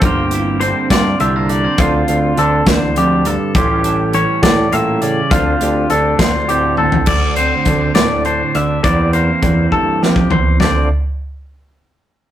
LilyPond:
<<
  \new Staff \with { instrumentName = "Clean electric guitar" } { \time 6/8 \key d \minor \tempo 4. = 68 g'4 c''8 d''8 e''8 d''8 | f'4 a'8 c''8 g'8 a'8 | g'4 cis''8 d''8 e''8 d''8 | f'4 a'8 c''8 g'8 a'8 |
d''8 c''4 d''8 c''8 e''8 | d''8 c''4 a'8 g'8 c''8 | d''8 r2 r8 | }
  \new Staff \with { instrumentName = "Clean electric guitar" } { \time 6/8 \key d \minor << { <bes c' f'>8 e'8 c'8 f'8 g16 bes16 a16 c'16 | <c' d' f'>8 f'8 d'2 | <g cis' f'>8 d'16 r16 cis'2 | <c' d' f'>8 g'8 d'8 f'8 c'8 d'8 |
r8 c'4. d'4 | <e bes c' e'>8 bes2~ bes8 | <d c' d' f'>8 r2 r8 | } \\ { g,4 d4 d4 | d,4 d8 e,8 f,8 g,8 | a,4 e8 a,8 bes,8 cis8 | d,4 d4 a,4 |
d,4 d8 a,4 d8 | e,4 e8 g,8 f,8 e,8 | d,8 r2 r8 | } >> }
  \new Staff \with { instrumentName = "Picked electric bass" } { \clef bass \time 6/8 \key d \minor g,,4. g,8 c,4 | d,8 d,8 d,8 d,4. | a,,4. a,8 a,4 | d,8 d,8 d,8 d,4. |
d,4 d,8 d,4 d,8 | e,4 e,8 r4. | d,8 r2 r8 | }
  \new DrumStaff \with { instrumentName = "Drums" } \drummode { \time 6/8 <hh bd>8 hh8 hh8 <hh bd sn>8 hh8 hh8 | <hh bd>8 hh8 hh8 <hh bd sn>8 hh8 hh8 | <hh bd>8 hh8 hh8 <hh bd sn>8 hh8 hh8 | <hh bd>8 hh8 hh8 <hh bd sn>8 hh8 tommh16 tomfh16 |
<cymc bd>8 hh8 <hh bd>8 <hh sn>8 hh8 hh8 | <hh bd>8 hh8 <hh bd>8 bd8 sn16 bd16 tomfh8 | <sn tomfh>4. r4. | }
>>